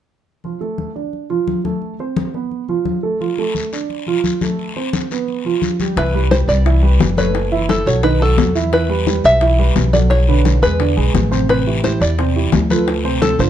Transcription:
0.44 grand piano F3 F4, high conga
0.61 grand piano A3 A4, high conga
0.78 high conga
0.95 grand piano D4 D5, high conga
1.13 high conga
1.30 grand piano F3 F4, high conga
1.47 high conga
1.64 grand piano A3 A4, high conga
1.82 high conga
1.99 grand piano C4 C5, high conga
2.17 high conga
2.34 grand piano B3 B4, high conga
2.51 high conga
2.68 grand piano F3 F4, high conga
2.85 high conga
3.03 grand piano A3 A4
3.21 grand piano F3 F4, high conga, long guiro
3.38 grand piano A3 A4, high conga
3.55 high conga, short guiro
3.72 grand piano D4 D5, high conga, short guiro
3.90 high conga, long guiro
4.07 grand piano F3 F4, high conga
4.24 high conga, short guiro
4.41 grand piano A3 A4, high conga, short guiro
4.59 high conga, long guiro
4.76 grand piano C4 C5, high conga
4.93 high conga, short guiro
5.11 grand piano B3 B4, high conga, short guiro
5.28 high conga, long guiro
5.45 grand piano F3 F4, high conga
5.62 high conga, short guiro
5.80 grand piano G3 G4, high conga, short guiro
5.96 upright bass C2, grand piano E3 E4 E5, five-string banjo B4, high bongo, high conga, long guiro
6.14 grand piano G3 G4 B4, high conga
6.31 grand piano G3 G4 B4, five-string banjo C5, high bongo, high conga, short guiro
6.48 upright bass C2, five-string banjo D5, high conga, short guiro
6.65 grand piano E3 E4 E5, high bongo, high conga, long guiro
6.83 grand piano G3 G4 B4, high conga
7.00 upright bass F#1, high bongo, low bongo, high conga, short guiro
7.17 grand piano A3 A4 C#5, five-string banjo B4, high conga, short guiro
7.35 high bongo, long guiro
7.51 grand piano E3 E4 E5, high bongo, high conga
7.69 five-string banjo A4, high bongo, high conga, short guiro
7.86 upright bass B1, grand piano F#3 F#4 A4, five-string banjo C#5, high bongo, high conga, short guiro
8.03 grand piano D#3 D#4 D#5, five-string banjo B4, high bongo, high conga, long guiro
8.20 grand piano F#3 F#4 A4, five-string banjo A4, high bongo, high conga
8.37 upright bass E2, high bongo, low bongo, high conga, short guiro
8.55 grand piano E3 E4 E5, short guiro
8.72 grand piano E3 E4 E5, five-string banjo B4, high bongo, high conga, long guiro
8.89 grand piano G3 G4 B4, high conga
9.07 grand piano G3 G4 B4, high bongo, high conga, short guiro
9.24 upright bass B1, five-string banjo E5, high conga, short guiro
9.41 grand piano E3 E4 E5, high bongo, high conga, long guiro
9.58 grand piano G3 G4 B4, high conga
9.76 upright bass B1, high bongo, low bongo, high conga, short guiro
9.93 grand piano F#3 F#4 A4, five-string banjo D5, high conga, short guiro
10.10 five-string banjo C#5, high bongo, long guiro
10.28 grand piano D3 D4 B4, high bongo, high conga
10.45 high bongo, high conga, short guiro
10.62 upright bass E2, grand piano G#3 G#4 B4, five-string banjo B4, high bongo, high conga, short guiro
10.79 grand piano D3 D4 D5, high bongo, high conga, long guiro
10.97 upright bass B1, grand piano G#3 G#4 B4, high bongo, high conga
11.14 upright bass A1, high bongo, low bongo, high conga, short guiro
11.31 grand piano C3 C4 C5, high conga, short guiro
11.48 grand piano C3 C4 C5, five-string banjo B4, high bongo, high conga, long guiro
11.66 grand piano E3 E4 G4, high conga
11.84 grand piano E3 E4 G4, five-string banjo C5, high bongo, high conga, short guiro
12.00 upright bass E2, five-string banjo D5, high conga, short guiro
12.18 grand piano C3 C4 C5, high bongo, high conga, long guiro
12.35 grand piano E3 E4 G4, high conga
12.52 upright bass D2, high bongo, low bongo, high conga, short guiro
12.70 grand piano F3 F4 A4, five-string banjo B4, high conga, short guiro
12.88 high bongo, high conga, long guiro
13.04 grand piano C3 C4 C5, high bongo, high conga
13.22 five-string banjo A4, high bongo, high conga, short guiro
13.39 upright bass G1, grand piano D3 D4 F4, five-string banjo C5, high bongo, short guiro

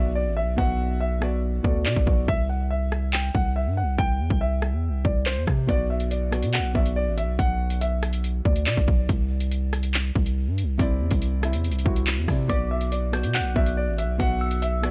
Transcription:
Already playing: 808-style bass B1, felt piano B2 B3 F#4 D5, grand piano E5
0.15 grand piano D5
0.26 808-style bass A1
0.37 grand piano E5
0.42 808-style bass B1
0.56 808-style bass B1, felt piano B2 B3 F#4 E5, grand piano F#5, kick
1.00 grand piano E5
1.20 felt piano B2 B3 F#4 D5, cross-stick
1.63 808-style bass D2, felt piano B2 B3 F#4 A4, grand piano D5, kick
1.86 808-style bass B2, grand piano D5, clap
1.96 808-style bass B1, kick
2.05 808-style bass B1, felt piano B2 B3 F#4 D5, kick
2.28 808-style bass C2, grand piano E5, kick
2.49 grand piano F#5
2.71 grand piano E5
2.92 cross-stick
3.13 grand piano G5, clap
3.35 808-style bass C2, grand piano F#5, kick
3.56 grand piano E5
3.67 808-style bass G2
3.77 grand piano F#5
3.83 808-style bass C2
3.98 808-style bass C2, grand piano G5, kick
4.20 808-style bass E2
4.30 808-style bass C2, kick
4.41 grand piano E5
4.62 cross-stick
4.73 808-style bass E2
4.89 808-style bass C2
5.05 808-style bass C2, grand piano D5, kick
5.26 grand piano C5, clap
5.37 808-style bass E2
5.47 808-style bass C3, kick, cross-stick
5.67 808-style bass B1, felt piano B2 B3 F#4 D5, grand piano D5, kick, closed hi-hat
5.90 grand piano E5
6.00 closed hi-hat
6.11 grand piano D5, closed hi-hat
6.31 felt piano B2 B3 F#4 D5, cross-stick, closed hi-hat
6.43 808-style bass B2, closed hi-hat
6.54 grand piano F#5, clap
6.59 808-style bass B1
6.73 808-style bass B1, felt piano B2 B3 F#4 D5, grand piano E5, kick
6.86 closed hi-hat
6.96 grand piano D5
7.07 808-style bass A1
7.18 grand piano E5, closed hi-hat
7.23 808-style bass B1
7.39 808-style bass B1, grand piano F#5, kick, closed hi-hat
7.70 closed hi-hat
7.81 grand piano E5, closed hi-hat
8.03 cross-stick, closed hi-hat
8.13 closed hi-hat
8.24 closed hi-hat
8.45 808-style bass D2, grand piano D5, kick
8.56 closed hi-hat
8.67 808-style bass B2, grand piano D5, clap
8.77 808-style bass B1, kick
8.88 808-style bass B1, kick
9.09 808-style bass C2, kick, closed hi-hat
9.40 closed hi-hat
9.52 closed hi-hat
9.73 cross-stick, closed hi-hat
9.83 closed hi-hat
9.94 clap
10.15 808-style bass C2, kick
10.26 closed hi-hat
10.47 808-style bass G2
10.58 closed hi-hat
10.63 808-style bass C2
10.78 808-style bass C2, felt piano C3 C4 E4 D5, kick, closed hi-hat
11.01 808-style bass E2
11.11 808-style bass C2, kick, closed hi-hat
11.22 closed hi-hat
11.41 felt piano C3 C4 E4 E5, cross-stick, closed hi-hat
11.53 808-style bass E2, closed hi-hat
11.64 closed hi-hat
11.70 808-style bass C2, closed hi-hat
11.79 closed hi-hat
11.84 808-style bass C2, felt piano C3 C4 E4 F#4, kick
11.96 closed hi-hat
12.07 clap
12.18 808-style bass E2
12.27 felt piano C3 C4 E4 D5, 808-style bass C3, kick, cross-stick, open hi-hat
12.48 808-style bass B1, felt piano B2 B3 F#4 D5, grand piano D5, synth bell D6, kick, closed hi-hat
12.71 grand piano E5
12.81 closed hi-hat
12.92 grand piano D5, closed hi-hat
13.12 felt piano B2 B3 F#4 D5, synth bell G6, cross-stick, closed hi-hat
13.23 808-style bass B2, closed hi-hat
13.35 grand piano F#5, synth bell F#6, clap
13.40 808-style bass B1
13.54 808-style bass B1, felt piano B2 B3 F#4 D5, grand piano E5, kick
13.66 closed hi-hat
13.77 grand piano D5
13.88 808-style bass A1
13.98 grand piano E5, closed hi-hat
14.04 808-style bass B1
14.18 808-style bass B1, felt piano B2 B3 F#4 E5, grand piano F#5, kick, closed hi-hat
14.41 synth bell E6
14.51 closed hi-hat
14.62 grand piano E5, closed hi-hat
14.82 felt piano B2 B3 F#4 D5, cross-stick, closed hi-hat

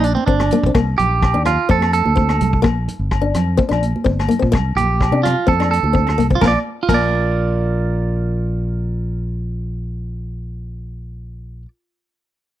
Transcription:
Already playing: fingered electric bass A#1
0.03 clean electric guitar D4, closed hi-hat
0.15 clean electric guitar C4, high conga
0.26 fingered electric bass G1, steel-string acoustic guitar C4, clean electric guitar D4, kick
0.40 cross-stick, high conga, low agogo
0.51 steel-string acoustic guitar A#3, closed hi-hat, low conga
0.63 fingered electric bass B1, steel-string acoustic guitar C4, kick
0.75 fingered electric bass C2, steel-string acoustic guitar A#3, kick, cross-stick, low agogo
0.98 fingered electric bass A#1, clean electric guitar G4, closed hi-hat, low conga
1.22 kick, cross-stick, low agogo
1.34 fingered electric bass D#2, steel-string acoustic guitar D4
1.45 clean electric guitar F4, cross-stick, closed hi-hat, low conga, low agogo
1.69 fingered electric bass F2, steel-string acoustic guitar C4, clean electric guitar A4, kick, high conga
1.81 cross-stick, high conga, low agogo
1.93 clean electric guitar A4, closed hi-hat
2.06 fingered electric bass D2, high conga
2.16 steel-string acoustic guitar C4, kick
2.29 cross-stick, high conga, low agogo
2.41 fingered electric bass C2, closed hi-hat, low conga
2.53 kick
2.62 fingered electric bass A#1, steel-string acoustic guitar A#3, kick, cross-stick, low agogo
2.88 closed hi-hat, low conga
2.99 fingered electric bass G1
3.11 kick, cross-stick, low agogo
3.21 steel-string acoustic guitar D4
3.34 fingered electric bass F2, cross-stick, closed hi-hat, low conga, low agogo
3.57 steel-string acoustic guitar C4, kick, high conga
3.69 fingered electric bass A#1, steel-string acoustic guitar D4, cross-stick, high conga, low agogo
3.83 closed hi-hat
3.96 high conga
4.04 fingered electric bass G1, steel-string acoustic guitar C4, kick
4.19 cross-stick, high conga, low agogo
4.28 steel-string acoustic guitar A#3, closed hi-hat, low conga
4.39 fingered electric bass A#2, steel-string acoustic guitar C4, kick
4.52 fingered electric bass C2, muted steel-string acoustic guitar stroke, kick, cross-stick, low agogo
4.56 low conga
4.76 fingered electric bass A#1, clean electric guitar G4, closed hi-hat, high conga, low conga
5.01 kick, cross-stick, low agogo
5.12 fingered electric bass C3, steel-string acoustic guitar D4
5.23 clean electric guitar F4, cross-stick, closed hi-hat, low conga, low agogo
5.47 fingered electric bass F2, steel-string acoustic guitar C4, clean electric guitar A4, kick, high conga
5.60 steel-string acoustic guitar D4, cross-stick, high conga, low agogo
5.71 clean electric guitar A4, closed hi-hat
5.83 fingered electric bass D2, high conga
5.93 steel-string acoustic guitar C4, kick
6.07 cross-stick, high conga, low agogo
6.18 fingered electric bass C2, steel-string acoustic guitar A#3, closed hi-hat, low conga
6.30 steel-string acoustic guitar C4, kick
6.35 clean electric guitar F4
6.41 fingered electric bass A#1, steel-string acoustic guitar A#3, clean electric guitar A#4, kick, snare, high conga, low agogo
6.47 clean electric guitar D5
6.83 clean electric guitar F4
6.89 fingered electric bass A#1, steel-string acoustic guitar A#3, clean electric guitar A#4, kick, crash, high conga, low agogo
6.94 clean electric guitar D5

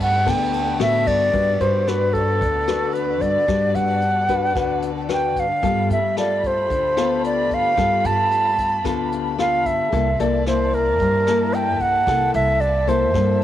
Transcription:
Already playing: upright bass G2, nylon-string guitar G3, violin section G3 A3 A4 B4
0.00 flute F#5, ride
0.26 upright bass D2, nylon-string guitar D3 B3 A4, flute G5, kick, cross-stick, ride
0.54 ride
0.79 upright bass A2, nylon-string guitar B3 F#4 A4, flute E5, cross-stick, ride
1.07 upright bass G2, flute D5, kick, ride
1.33 upright bass G2, nylon-string guitar G3 D4 F#4 B4, violin section B3 F#4 D5, kick, closed hi-hat
1.60 upright bass G2, nylon-string guitar D4 F#4 B4, flute C5, closed hi-hat
1.88 nylon-string guitar D4 F#4 B4, flute B4, cross-stick, closed hi-hat
2.13 flute A4, kick, closed hi-hat
2.41 upright bass D2, nylon-string guitar D3, kick, closed hi-hat
2.68 nylon-string guitar D4 F#4 B4, cross-stick, closed hi-hat
2.93 flute B4, closed hi-hat
3.21 upright bass G2, flute D5, kick, closed hi-hat
3.47 upright bass G2, nylon-string guitar G3 D4 F#4 B4, violin section A4, kick, cross-stick, closed hi-hat
3.75 upright bass G2, flute F#5, closed hi-hat
4.02 closed hi-hat
4.29 nylon-string guitar D4 F#4 B4, kick, closed hi-hat
4.55 upright bass D2, nylon-string guitar D3 D4 F#4 B4, kick, cross-stick, closed hi-hat
4.82 closed hi-hat
5.09 nylon-string guitar D4 F#4 B4, cross-stick, closed hi-hat
5.13 flute G5
5.36 upright bass G2, flute F5, kick, closed hi-hat
5.62 upright bass G2, nylon-string guitar G3 B3 F4 A4, violin section A3 F4 G4 B5, kick, closed hi-hat
5.90 upright bass G2, flute E5, closed hi-hat
6.17 nylon-string guitar F4 A4, flute D5, cross-stick, closed hi-hat
6.44 flute C5, kick, closed hi-hat
6.70 upright bass D2, nylon-string guitar D3, kick, closed hi-hat
6.97 nylon-string guitar B3 F4 A4, cross-stick, closed hi-hat
7.24 flute D5, closed hi-hat
7.50 upright bass G2, flute F5, kick, closed hi-hat
7.77 upright bass G2, nylon-string guitar G3 B3 F4 A4, kick, cross-stick, closed hi-hat
8.04 upright bass G2, flute A5, closed hi-hat
8.31 closed hi-hat
8.58 kick, closed hi-hat
8.84 upright bass D2, nylon-string guitar D3 B3 F4 A4, kick, cross-stick, closed hi-hat
9.12 closed hi-hat
9.39 nylon-string guitar B3 F4 A4, flute F5, cross-stick, closed hi-hat
9.66 upright bass G2, flute E5, kick, closed hi-hat
9.92 upright bass C2, nylon-string guitar C3 A#3 E4 A4, violin section A#3 E4 D5 A5, kick, closed hi-hat
10.20 upright bass C2, nylon-string guitar A#3 E4 A4, flute D5, closed hi-hat
10.46 nylon-string guitar A#3 E4, flute C5, cross-stick, closed hi-hat
10.73 flute A#4, kick, closed hi-hat
11.00 upright bass G2, nylon-string guitar G2, kick, closed hi-hat
11.27 nylon-string guitar A#3 E4 A4, cross-stick, closed hi-hat
11.54 flute G5, closed hi-hat
11.80 upright bass C2, flute F#5, kick, closed hi-hat
12.07 upright bass C2, nylon-string guitar C3 A#3 E4 A4, violin section E5, kick, cross-stick, closed hi-hat
12.34 upright bass C2, flute E5, closed hi-hat
12.61 flute D5, closed hi-hat
12.87 nylon-string guitar A#3 E4 A4, flute C5, kick, closed hi-hat
13.14 nylon-string guitar G2 A#3 E4 A4, upright bass G2, kick, cross-stick, closed hi-hat

